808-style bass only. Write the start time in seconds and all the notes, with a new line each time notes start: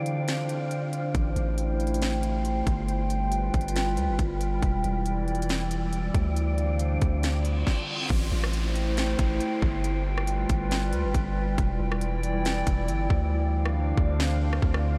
1.15 A1
1.36 A1
2.67 G1
3.54 G1
3.97 D2
4.08 G1
4.19 G1
4.63 E1
4.84 E1
6.14 D2
7.02 D2
8.10 A1
8.32 A1
9.19 A1
9.62 G1
10.50 G1
10.93 D2
11.04 G1
11.14 G1
11.58 E1
11.80 E1
12.67 E1
12.88 G1
13.10 D2
13.97 D2
14.62 D2